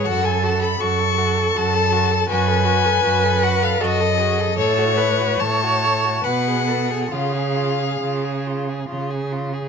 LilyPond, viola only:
\new Staff \with { instrumentName = "Viola" } { \time 3/4 \key fis \minor \tempo 4 = 77 a'4 a'2 | b'2 a'8 gis'8 | a'8 b'8 cis''4 b'8 a'8 | gis'2~ gis'8 r8 | }